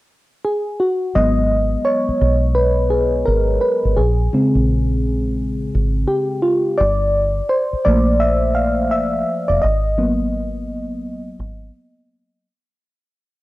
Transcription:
0.45 0.80 G#4 medium
0.80 1.15 F#4 medium
1.15 1.75 G#1 medium
1.15 3.93 F#3 soft
1.15 3.93 G#3 soft
1.15 3.93 B3 medium
1.15 1.81 D#5 loud
1.85 2.57 C#5 medium
2.08 muted fingered electric bass stroke soft
2.21 3.22 B1 medium
2.55 2.91 B4 medium
2.90 3.26 G#4 medium
3.25 3.57 G#1 medium
3.25 3.62 A#4 medium
3.61 3.94 B4 medium
3.85 3.95 G#1 medium
3.96 4.27 A#1 loud
3.96 5.33 G#4 medium
4.33 6.75 C#3 soft
4.33 6.76 G#3 soft
4.33 6.76 C4 medium
4.55 5.70 A#1 medium
5.75 6.04 G#1 medium
6.08 6.22 G4 medium
6.42 6.56 F4 medium
6.78 7.40 G1 loud
6.78 7.51 D5 medium
7.49 7.63 C5 medium
7.73 muted fingered electric bass stroke soft
7.85 8.92 A#1 medium
7.85 9.57 F3 medium
7.85 9.57 A3 soft
7.85 9.58 A#3 medium
7.85 8.21 D5 loud
8.20 8.56 E5 loud
8.55 8.91 F5 medium
8.91 9.21 G1 medium
8.91 9.43 E5 loud
9.48 9.60 F1 medium
9.48 9.62 D5 medium
9.62 11.35 G#1 loud
9.62 12.04 D#5 medium
9.98 10.47 F#3 medium
9.98 10.47 A#3 soft
9.98 10.47 B3 medium
11.39 11.68 G#1 medium

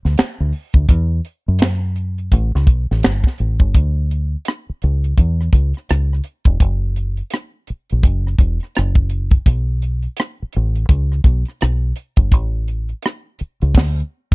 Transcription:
0.05 0.16 D2 medium
0.05 snare soft
0.18 finger snap loud
0.18 snare loud
0.18 closed hi-hat loud
0.40 0.52 D2 medium
0.53 open hi-hat soft
0.73 0.87 D2 medium
0.73 kick loud
0.73 closed hi-hat soft
0.89 1.19 E2 loud
0.89 kick loud
0.89 closed hi-hat medium
1.25 closed hi-hat medium
1.48 2.29 F#2 medium
1.59 finger snap medium
1.59 snare loud
1.59 closed hi-hat medium
1.96 closed hi-hat medium
2.18 closed hi-hat soft
2.32 2.51 A1 loud
2.32 kick medium
2.32 closed hi-hat medium
2.55 2.68 C#2 medium
2.55 snare soft
2.67 2.86 B1 medium
2.67 kick medium
2.67 closed hi-hat medium
2.91 3.02 A1 medium
2.91 snare soft
3.03 3.22 G1 loud
3.03 finger snap medium
3.03 snare loud
3.03 closed hi-hat loud
3.24 kick medium
3.24 snare soft
3.38 3.57 A1 medium
3.38 closed hi-hat medium
3.59 3.72 G1 medium
3.59 kick loud
3.59 closed hi-hat soft
3.75 4.35 D2 medium
3.75 kick loud
3.75 closed hi-hat medium
4.11 closed hi-hat medium
4.45 cross-stick loud
4.45 closed hi-hat medium
4.70 muted fingered electric bass stroke soft
4.82 5.13 C#2 medium
4.82 closed hi-hat medium
5.04 closed hi-hat soft
5.18 5.48 E2 medium
5.18 kick medium
5.18 closed hi-hat medium
5.41 cross-stick soft
5.53 5.72 C#2 medium
5.53 kick medium
5.53 closed hi-hat medium
5.74 cross-stick soft
5.74 closed hi-hat soft
5.89 6.20 C#2 medium
5.89 cross-stick loud
5.89 closed hi-hat medium
6.13 cross-stick soft
6.24 closed hi-hat medium
6.45 6.58 E1 medium
6.45 kick medium
6.45 closed hi-hat soft
6.60 7.20 F#1 medium
6.60 kick loud
6.60 closed hi-hat medium
6.96 closed hi-hat medium
7.17 closed hi-hat soft
7.30 cross-stick loud
7.30 closed hi-hat medium
7.67 muted fingered electric bass stroke soft
7.67 closed hi-hat medium
7.90 8.03 A#1 medium
7.90 closed hi-hat soft
8.03 8.34 F#1 medium
8.03 kick medium
8.03 closed hi-hat medium
8.27 cross-stick soft
8.39 8.58 E1 medium
8.39 kick loud
8.39 closed hi-hat medium
8.60 cross-stick soft
8.60 closed hi-hat soft
8.75 9.36 F#1 medium
8.75 cross-stick loud
8.75 closed hi-hat medium
8.95 kick medium
9.10 closed hi-hat medium
9.31 kick medium
9.31 closed hi-hat soft
9.46 10.06 B1 loud
9.46 kick loud
9.46 closed hi-hat medium
9.82 closed hi-hat medium
10.03 closed hi-hat soft
10.17 cross-stick loud
10.17 closed hi-hat medium
10.42 muted fingered electric bass stroke soft
10.53 10.85 A1 medium
10.53 closed hi-hat medium
10.75 closed hi-hat soft
10.89 11.19 C#2 loud
10.89 kick medium
10.89 closed hi-hat medium
11.12 cross-stick soft
11.24 11.43 B1 medium
11.24 kick medium
11.24 closed hi-hat medium
11.45 cross-stick soft
11.45 closed hi-hat soft
11.61 11.91 B1 medium
11.61 cross-stick loud
11.61 closed hi-hat medium
11.96 closed hi-hat medium
12.16 12.33 G1 medium
12.16 kick medium
12.16 closed hi-hat soft
12.32 12.92 A1 medium
12.32 kick loud
12.32 closed hi-hat medium
12.68 closed hi-hat medium
12.89 closed hi-hat soft
13.02 cross-stick loud
13.02 closed hi-hat medium
13.39 muted fingered electric bass stroke soft
13.39 closed hi-hat medium
13.62 13.73 C#2 medium
13.62 closed hi-hat soft
13.75 14.01 D2 loud
13.75 kick loud
13.75 snare medium
13.75 crash medium

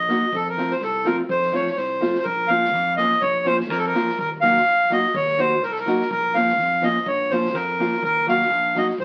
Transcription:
0.00 0.14 A#1 medium
0.00 0.36 D#5 medium
0.08 0.24 F#3 medium
0.08 0.24 A#3 medium
0.08 0.24 D#4 medium
0.08 0.25 F#4 medium
0.08 snare soft
0.33 0.62 F2 medium
0.33 0.48 A4 medium
0.33 kick medium
0.49 0.73 A#4 medium
0.57 0.72 F3 medium
0.57 0.73 A3 medium
0.57 0.73 C4 medium
0.57 0.73 F4 medium
0.57 snare soft
0.70 0.82 C5 medium
0.70 snare soft
0.81 1.10 C2 medium
0.81 1.07 A4 medium
0.81 snare soft
1.04 1.20 F3 medium
1.04 1.21 A3 medium
1.04 1.21 C4 medium
1.04 1.21 F4 medium
1.04 1.17 A#4 medium
1.04 snare soft
1.29 1.58 F2 medium
1.29 1.55 C5 medium
1.29 kick medium
1.42 snare soft
1.52 1.68 F3 medium
1.52 1.68 A3 soft
1.52 1.68 C4 soft
1.52 1.69 F4 medium
1.52 1.69 C#5 medium
1.52 snare soft
1.67 snare soft
1.71 1.77 C#5 medium
1.77 2.06 C2 medium
1.77 2.17 C5 medium
1.77 snare soft
2.00 2.16 F3 soft
2.00 2.16 A3 medium
2.00 2.17 C4 soft
2.00 2.17 F4 medium
2.00 snare soft
2.15 2.25 C5 medium
2.15 snare soft
2.24 2.73 A#1 medium
2.24 2.50 A#4 medium
2.24 kick medium
2.48 2.65 F3 medium
2.48 2.65 A#3 soft
2.48 2.65 C#4 medium
2.48 2.66 F4 medium
2.48 2.93 F5 loud
2.48 snare soft
2.64 snare soft
2.73 3.02 F2 medium
2.73 snare soft
2.97 3.13 F3 medium
2.97 3.13 A#3 medium
2.97 3.14 C#4 medium
2.97 3.14 F4 medium
2.97 3.22 D#5 loud
2.97 snare soft
3.12 snare soft
3.21 3.70 A#1 medium
3.21 3.46 C#5 medium
3.21 kick medium
3.45 3.60 F3 medium
3.45 3.61 A#3 medium
3.45 3.61 C#4 medium
3.45 3.61 F4 medium
3.45 3.57 C5 loud
3.45 snare soft
3.60 snare soft
3.70 3.99 F2 medium
3.70 3.78 A#4 medium
3.70 snare soft
3.78 3.85 A4 medium
3.86 4.18 A#4 medium
3.94 4.09 F3 medium
3.94 4.10 A#3 soft
3.94 4.10 C#4 medium
3.94 4.10 F4 medium
3.94 snare soft
4.08 snare soft
4.19 4.67 D#2 medium
4.19 4.30 A#4 medium
4.19 kick medium
4.41 4.57 F#3 medium
4.41 4.58 A#3 medium
4.41 4.58 D#4 soft
4.41 4.58 F#4 medium
4.41 4.91 F5 loud
4.41 snare soft
4.57 snare soft
4.66 4.95 A#1 medium
4.66 snare soft
4.90 5.05 F#3 medium
4.90 5.05 A#3 medium
4.90 5.06 D#4 medium
4.90 5.06 F#4 medium
4.90 5.16 D#5 medium
4.90 snare soft
5.03 snare soft
5.14 5.62 D#2 medium
5.14 5.40 C#5 medium
5.14 kick loud
5.27 snare soft
5.38 5.53 F#3 medium
5.38 5.53 A#3 soft
5.38 5.53 D#4 soft
5.38 5.54 F#4 medium
5.38 5.64 C5 medium
5.38 snare soft
5.62 5.91 C2 medium
5.62 5.71 A#4 medium
5.62 snare soft
5.71 5.78 A4 medium
5.75 snare soft
5.80 6.09 A#4 medium
5.86 6.01 F#3 medium
5.86 6.02 A#3 medium
5.86 6.02 D#4 medium
5.86 6.02 F#4 medium
5.86 snare soft
6.01 snare soft
6.11 6.59 A#1 medium
6.11 6.35 A#4 medium
6.11 kick medium
6.34 6.50 F3 medium
6.34 6.50 A#3 medium
6.34 6.50 C#4 medium
6.34 6.51 F4 medium
6.34 6.84 F5 medium
6.34 snare soft
6.48 snare soft
6.59 6.88 F2 medium
6.59 snare soft
6.82 6.97 F3 medium
6.82 6.98 A#3 medium
6.82 6.98 C#4 medium
6.82 6.98 F4 medium
6.82 7.08 D#5 medium
6.82 snare soft
6.95 snare soft
7.06 7.55 A#1 medium
7.06 7.32 C#5 medium
7.06 kick medium
7.30 7.46 F3 medium
7.30 7.47 A#3 soft
7.30 7.47 C#4 medium
7.30 7.47 F4 medium
7.30 7.55 C5 medium
7.30 snare soft
7.45 snare soft
7.54 7.84 F2 medium
7.54 8.03 A#4 medium
7.54 snare soft
7.79 7.94 F3 medium
7.79 7.94 A#3 medium
7.79 7.95 C#4 medium
7.79 7.95 F4 medium
7.79 snare soft
7.93 snare soft
8.02 8.50 D#2 medium
8.02 8.26 A#4 loud
8.02 kick medium
8.27 8.42 F#3 medium
8.27 8.42 A#3 soft
8.27 8.43 D#4 soft
8.27 8.43 F#4 medium
8.27 8.78 F5 loud
8.27 snare soft
8.41 snare soft
8.50 8.79 A#1 medium
8.50 snare soft
8.75 8.90 F#3 medium
8.75 8.91 A#3 medium
8.75 8.91 D#4 medium
8.75 8.91 F#4 medium
8.75 8.88 D#5 medium
8.75 snare soft
8.90 snare soft
8.98 9.05 F2 medium
8.98 9.05 C5 medium
8.98 kick medium

